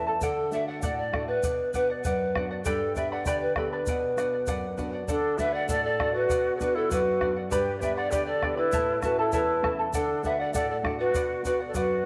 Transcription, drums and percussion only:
0.21 bombo low, shaker
0.52 shaker
0.82 bombo low, shaker
1.14 bombo rim, bombo low
1.43 bombo low, shaker
1.74 bombo low, shaker
2.04 bombo low, shaker
2.35 bombo rim, bombo low
2.65 bombo low, shaker
2.96 bombo low, shaker
3.26 bombo low, shaker
3.56 bombo rim, bombo low
3.86 bombo low, shaker
4.18 bombo rim, shaker
4.47 bombo low, shaker
4.78 bombo low, shaker
5.08 bombo low, shaker
5.39 bombo low, shaker
5.69 bombo low, shaker
6.00 bombo rim, bombo low
6.29 bombo low, shaker
6.61 bombo low, shaker
6.91 bombo low, shaker
7.21 bombo rim, bombo low
7.52 bombo low, shaker
7.82 bombo low, shaker
8.12 bombo low, shaker
8.43 bombo rim, bombo low
8.72 bombo low, shaker
9.02 bombo rim, bombo low, shaker
9.32 bombo low, shaker
9.64 bombo rim, bombo low
9.94 bombo low, shaker
10.24 bombo low, shaker
10.54 bombo low, shaker
10.85 bombo rim, bombo low
11.14 bombo low, shaker
11.45 bombo low, shaker
11.75 bombo low, shaker

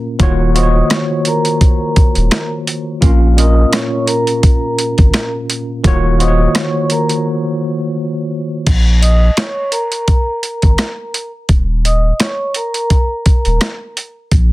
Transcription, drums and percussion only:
0.20 kick, closed hi-hat
0.56 closed hi-hat
0.90 cross-stick, snare, closed hi-hat
1.25 closed hi-hat
1.45 closed hi-hat
1.61 kick, closed hi-hat
1.96 kick, closed hi-hat
2.15 closed hi-hat
2.31 cross-stick, snare, closed hi-hat
2.67 closed hi-hat
3.02 kick, closed hi-hat
3.38 closed hi-hat
3.73 cross-stick, snare, closed hi-hat
4.07 closed hi-hat
4.27 closed hi-hat
4.43 kick, closed hi-hat
4.79 closed hi-hat
4.98 kick, closed hi-hat
5.14 cross-stick, snare, closed hi-hat
5.50 closed hi-hat
5.84 kick, closed hi-hat
6.20 closed hi-hat
6.55 cross-stick, snare, closed hi-hat
6.90 closed hi-hat
7.09 closed hi-hat
8.67 kick, closed hi-hat, crash
9.03 closed hi-hat
9.37 cross-stick, snare, closed hi-hat
9.72 closed hi-hat
9.92 closed hi-hat
10.08 kick, closed hi-hat
10.43 closed hi-hat
10.62 kick, closed hi-hat
10.78 cross-stick, snare, closed hi-hat
11.14 closed hi-hat
11.49 kick, closed hi-hat
11.85 closed hi-hat
12.20 cross-stick, snare, closed hi-hat
12.54 closed hi-hat
12.74 closed hi-hat
12.90 kick, closed hi-hat
13.26 kick, closed hi-hat
13.45 closed hi-hat
13.61 cross-stick, snare, closed hi-hat
13.97 closed hi-hat
14.32 kick, closed hi-hat

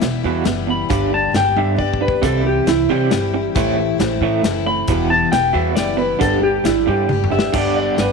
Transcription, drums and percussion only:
0.01 snare, closed hi-hat
0.45 snare, closed hi-hat
0.90 kick, closed hi-hat
1.34 snare, closed hi-hat
1.79 kick
1.94 kick
2.08 kick
2.23 kick, closed hi-hat
2.67 snare, closed hi-hat
3.11 snare, closed hi-hat
3.56 kick, closed hi-hat
4.00 snare, closed hi-hat
4.44 snare, closed hi-hat
4.88 kick, closed hi-hat
5.33 snare, closed hi-hat
5.77 snare, closed hi-hat
6.21 kick, closed hi-hat
6.65 snare, closed hi-hat
7.09 high tom
7.24 mid tom
7.39 snare
7.54 kick, crash
7.98 snare, closed hi-hat

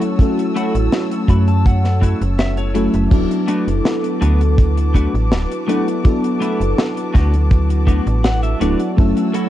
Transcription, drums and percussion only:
0.01 closed hi-hat
0.19 kick, closed hi-hat
0.39 closed hi-hat
0.56 closed hi-hat
0.75 closed hi-hat
0.92 snare, closed hi-hat
1.11 closed hi-hat
1.28 kick, closed hi-hat
1.48 closed hi-hat
1.66 kick, closed hi-hat
1.85 snare, closed hi-hat
2.02 kick, closed hi-hat
2.22 closed hi-hat
2.39 snare, closed hi-hat
2.57 closed hi-hat
2.75 closed hi-hat
2.94 closed hi-hat
3.11 kick, closed hi-hat, crash
3.31 closed hi-hat
3.48 closed hi-hat
3.68 closed hi-hat
3.85 snare, closed hi-hat
4.04 closed hi-hat
4.22 closed hi-hat
4.41 closed hi-hat
4.58 kick, closed hi-hat
4.78 closed hi-hat
4.94 kick, closed hi-hat
5.15 closed hi-hat
5.32 snare, closed hi-hat
5.52 closed hi-hat
5.69 closed hi-hat
5.88 closed hi-hat
6.05 kick, closed hi-hat
6.24 closed hi-hat
6.42 closed hi-hat
6.61 closed hi-hat
6.78 snare, closed hi-hat
6.97 closed hi-hat
7.15 kick, snare, closed hi-hat
7.34 closed hi-hat
7.51 kick, closed hi-hat
7.70 closed hi-hat
7.87 kick, closed hi-hat
8.07 closed hi-hat
8.24 snare, closed hi-hat
8.43 closed hi-hat
8.61 closed hi-hat
8.80 closed hi-hat
8.98 kick, closed hi-hat
9.17 closed hi-hat
9.34 closed hi-hat

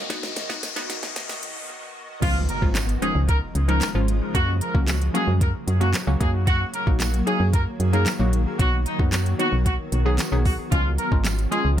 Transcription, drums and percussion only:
0.10 kick, snare, closed hi-hat
0.23 snare
0.36 snare, closed hi-hat
0.50 kick, snare
0.63 snare, closed hi-hat, tambourine
0.76 snare, closed hi-hat
0.90 snare, closed hi-hat
1.03 snare
1.16 snare, closed hi-hat
1.29 snare
1.43 closed hi-hat
2.22 kick, closed hi-hat, crash
2.49 closed hi-hat
2.62 kick
2.75 snare, clap, closed hi-hat, tambourine
2.89 closed hi-hat
3.02 closed hi-hat
3.29 kick, closed hi-hat
3.55 closed hi-hat
3.69 closed hi-hat
3.81 snare, clap, closed hi-hat, tambourine
4.08 closed hi-hat
4.35 kick, closed hi-hat
4.61 closed hi-hat
4.75 kick
4.87 snare, clap, closed hi-hat, tambourine
5.02 closed hi-hat
5.15 closed hi-hat
5.41 kick, closed hi-hat
5.68 closed hi-hat
5.81 closed hi-hat
5.93 snare, clap, closed hi-hat, tambourine
6.21 kick, closed hi-hat
6.47 kick, closed hi-hat
6.74 closed hi-hat
6.87 kick
7.00 snare, clap, closed hi-hat, tambourine
7.14 closed hi-hat
7.27 closed hi-hat
7.53 kick, closed hi-hat
7.80 closed hi-hat
7.93 closed hi-hat
8.06 snare, clap, closed hi-hat, tambourine
8.33 closed hi-hat
8.59 kick, closed hi-hat
8.86 closed hi-hat
8.99 kick
9.12 snare, clap, closed hi-hat, tambourine
9.26 closed hi-hat
9.40 closed hi-hat
9.66 kick, closed hi-hat
9.92 closed hi-hat
10.18 snare, clap, closed hi-hat, tambourine
10.45 kick, open hi-hat
10.72 kick, closed hi-hat
10.98 closed hi-hat
11.12 kick
11.24 snare, clap, closed hi-hat, tambourine
11.39 closed hi-hat
11.52 closed hi-hat

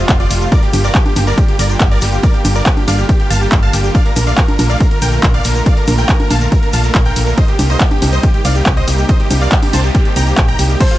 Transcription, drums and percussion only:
0.09 kick, clap, closed hi-hat, ride, shaker
0.20 closed hi-hat
0.30 open hi-hat, ride, shaker
0.41 closed hi-hat, shaker
0.52 kick, closed hi-hat, ride, shaker
0.63 closed hi-hat
0.73 open hi-hat, ride, high conga, shaker
0.84 closed hi-hat, shaker
0.95 kick, clap, closed hi-hat, ride, shaker
1.06 closed hi-hat, high conga
1.16 open hi-hat, ride, high conga, shaker
1.27 closed hi-hat, shaker
1.38 kick, closed hi-hat, ride, shaker
1.48 closed hi-hat
1.59 open hi-hat, ride, shaker
1.70 closed hi-hat, shaker
1.80 kick, clap, closed hi-hat, ride, shaker
1.91 closed hi-hat
2.01 open hi-hat, ride, shaker
2.13 closed hi-hat, shaker
2.23 kick, closed hi-hat, ride, shaker
2.34 closed hi-hat
2.45 open hi-hat, ride, high conga, shaker
2.55 closed hi-hat, shaker
2.66 kick, clap, closed hi-hat, ride, shaker
2.77 closed hi-hat, high conga
2.88 open hi-hat, ride, high conga, shaker
2.98 closed hi-hat, shaker
3.09 kick, closed hi-hat, ride, shaker
3.20 closed hi-hat
3.31 open hi-hat, ride, shaker
3.41 closed hi-hat, shaker
3.52 kick, clap, closed hi-hat, ride, shaker
3.63 closed hi-hat
3.73 open hi-hat, ride, shaker
3.84 closed hi-hat, shaker
3.95 kick, closed hi-hat, ride, shaker
4.06 closed hi-hat
4.16 open hi-hat, ride, high conga, shaker
4.27 closed hi-hat, shaker
4.37 kick, clap, closed hi-hat, ride, shaker
4.48 closed hi-hat, high conga
4.59 open hi-hat, ride, high conga, shaker
4.70 closed hi-hat, shaker
4.80 kick, closed hi-hat, ride, shaker
4.91 closed hi-hat
5.02 open hi-hat, ride, shaker
5.12 closed hi-hat, shaker
5.23 kick, clap, closed hi-hat, ride, shaker
5.34 closed hi-hat
5.44 open hi-hat, ride, shaker
5.55 closed hi-hat, shaker
5.66 kick, closed hi-hat, ride, shaker
5.77 closed hi-hat
5.87 open hi-hat, ride, high conga, shaker
5.98 closed hi-hat, shaker
6.09 kick, clap, closed hi-hat, ride, shaker
6.20 closed hi-hat, high conga
6.30 open hi-hat, ride, high conga, shaker
6.41 closed hi-hat, shaker
6.52 kick, closed hi-hat, ride, shaker
6.63 closed hi-hat
6.73 open hi-hat, ride, shaker
6.84 closed hi-hat, shaker
6.95 kick, clap, closed hi-hat, ride, shaker
7.05 closed hi-hat
7.16 open hi-hat, ride, shaker
7.27 closed hi-hat, shaker
7.37 kick, closed hi-hat, ride, shaker
7.48 closed hi-hat
7.59 open hi-hat, ride, high conga, shaker
7.70 closed hi-hat, shaker
7.80 kick, clap, closed hi-hat, ride, shaker
7.91 closed hi-hat, high conga
8.02 open hi-hat, ride, high conga, shaker
8.13 closed hi-hat, shaker
8.23 kick, closed hi-hat, ride, shaker
8.34 closed hi-hat
8.45 open hi-hat, ride, shaker
8.55 closed hi-hat, shaker
8.66 kick, clap, closed hi-hat, ride, shaker
8.77 closed hi-hat
8.88 open hi-hat, ride, shaker
8.98 closed hi-hat, shaker
9.09 kick, closed hi-hat, ride, shaker
9.20 closed hi-hat
9.30 open hi-hat, ride, high conga, shaker
9.41 closed hi-hat, shaker
9.52 kick, clap, closed hi-hat, ride, shaker
9.63 open hi-hat, high conga
9.73 open hi-hat, ride, high conga, shaker
9.84 closed hi-hat, shaker
9.95 kick, closed hi-hat, ride, shaker
10.05 closed hi-hat
10.16 open hi-hat, ride, shaker
10.27 closed hi-hat, shaker
10.37 kick, clap, closed hi-hat, ride, shaker
10.48 closed hi-hat
10.59 open hi-hat, ride, shaker
10.69 closed hi-hat, shaker
10.80 kick, closed hi-hat, crash, ride, shaker
10.91 closed hi-hat

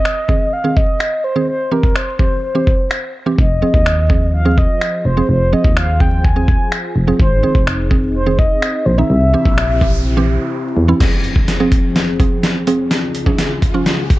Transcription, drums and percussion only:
0.05 finger snap
0.29 kick
0.77 kick
1.00 finger snap
1.83 kick
1.96 finger snap
2.19 kick
2.67 kick
2.91 finger snap
3.38 kick
3.74 kick
3.86 finger snap
4.10 kick
4.58 kick
4.81 finger snap
5.64 kick
5.77 finger snap
6.00 kick
6.25 kick
6.48 kick
6.72 finger snap
7.20 kick
7.55 kick
7.67 finger snap
7.91 kick
8.39 kick
8.62 finger snap
9.45 kick
9.58 finger snap
9.81 kick
11.00 kick, snare, closed hi-hat, crash
11.24 closed hi-hat
11.36 kick
11.48 snare, closed hi-hat
11.72 kick, closed hi-hat
11.96 snare, closed hi-hat
12.20 kick, closed hi-hat
12.43 snare, closed hi-hat
12.67 closed hi-hat
12.91 snare, closed hi-hat
13.15 closed hi-hat
13.26 kick
13.38 snare, closed hi-hat
13.62 kick, closed hi-hat
13.86 snare, closed hi-hat
14.10 kick, closed hi-hat

